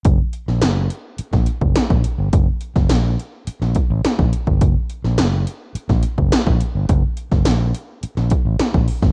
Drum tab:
HH |x-x-x-x-x-x-x-x-|x-x-x-x-x-x-x-x-|x-x-x-x-x-x-x-x-|x-x-x-x-x-x-x-o-|
SD |---oo----o--o---|---oo----o--o---|---oo----o--o---|---oo----o--o--o|
BD |o--------o-o-o--|o--o------o--o-o|o--------o-o-o--|o--o------o--o-o|